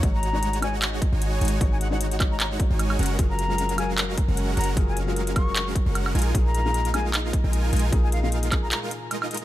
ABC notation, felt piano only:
X:1
M:4/4
L:1/16
Q:"Swing 16ths" 1/4=152
K:Bbphr
V:1 name="Felt piano"
[A,EGd]3 [A,EGd]3 [A,EGd]8- [A,EGd]2 | [A,EGd]3 [A,EGd]3 [A,EGd]4 [A,EGd] z4 z | [G,FAB]3 [G,FAB]3 [G,ABf]8- [G,ABf]2 | [G,FAB]3 [G,FAB]3 [G,ABf]8 z2 |
[B,,B,EA]3 [B,,B,EA]3 [B,,B,EA]8- [B,,B,EA]2 | [B,,B,EA]3 [B,,B,EA]3 [B,,B,EA]8- [B,,B,EA]2 |]